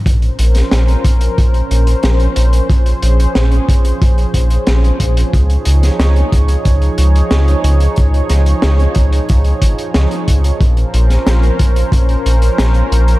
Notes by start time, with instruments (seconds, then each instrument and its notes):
0.06 analog synth bass A#1, analog synth pad F3 C#4 A#4 C5, kick, closed hi-hat
0.22 closed hi-hat
0.39 analog synth bass A#1, closed hi-hat
0.55 snare, closed hi-hat
0.71 analog synth bass A#1, snare, closed hi-hat
0.88 closed hi-hat
1.05 analog synth bass A#1, kick, closed hi-hat
1.21 closed hi-hat
1.38 analog synth bass A#1, kick, closed hi-hat
1.54 closed hi-hat
1.71 analog synth bass A#1, closed hi-hat
1.87 closed hi-hat
2.03 analog synth bass A#1, snare, closed hi-hat
2.20 closed hi-hat
2.36 analog synth bass A#1, closed hi-hat
2.53 closed hi-hat
2.70 analog synth bass A#1, analog synth pad G#4, kick, closed hi-hat
2.86 closed hi-hat
3.03 analog synth bass A#1, closed hi-hat
3.20 closed hi-hat
3.35 analog synth bass A#1, snare, closed hi-hat
3.52 closed hi-hat
3.69 analog synth bass A#1, kick, closed hi-hat
3.85 closed hi-hat
4.02 analog synth bass A#1, kick, closed hi-hat
4.18 closed hi-hat
4.34 analog synth bass A#1, kick, closed hi-hat
4.50 closed hi-hat
4.67 analog synth bass A#1, snare, closed hi-hat
4.84 closed hi-hat
5.00 analog synth bass A#1, kick, closed hi-hat
5.17 closed hi-hat
5.33 analog synth bass C#2, analog synth pad D#4 C#5, kick, closed hi-hat
5.50 closed hi-hat
5.65 analog synth bass C#2, closed hi-hat
5.83 snare, closed hi-hat
5.99 analog synth bass C#2, snare, closed hi-hat
6.16 closed hi-hat
6.32 analog synth bass C#2, kick, closed hi-hat
6.48 closed hi-hat
6.65 analog synth bass C#2, kick, closed hi-hat
6.82 closed hi-hat
6.98 analog synth bass C#2, closed hi-hat
7.16 closed hi-hat
7.31 analog synth bass C#2, snare, closed hi-hat
7.48 closed hi-hat
7.64 analog synth bass C#2, closed hi-hat
7.80 closed hi-hat
7.96 analog synth bass C#2, kick, closed hi-hat
8.14 closed hi-hat
8.29 analog synth bass C#2, snare, closed hi-hat
8.46 closed hi-hat
8.62 analog synth bass C#2, snare, closed hi-hat
8.79 closed hi-hat
8.95 analog synth bass C#2, kick, closed hi-hat
9.12 closed hi-hat
9.29 analog synth bass C#2, kick, closed hi-hat
9.44 closed hi-hat
9.62 analog synth bass G#1, kick, closed hi-hat
9.78 closed hi-hat
9.94 analog synth bass C#2, snare, closed hi-hat
10.11 closed hi-hat
10.28 analog synth bass C#2, kick, closed hi-hat
10.44 closed hi-hat
10.61 analog synth bass A#1, analog synth pad C#4 A#4 C5, kick, closed hi-hat
10.77 closed hi-hat
10.94 analog synth bass A#1, closed hi-hat
11.10 snare, closed hi-hat
11.27 analog synth bass A#1, snare, closed hi-hat
11.43 closed hi-hat
11.59 analog synth bass A#1, kick, closed hi-hat
11.76 closed hi-hat
11.92 analog synth bass A#1, kick, closed hi-hat
12.09 closed hi-hat
12.26 analog synth bass A#1, closed hi-hat
12.42 closed hi-hat
12.58 analog synth bass A#1, snare, closed hi-hat
12.74 closed hi-hat
12.92 analog synth bass A#1, closed hi-hat
13.08 closed hi-hat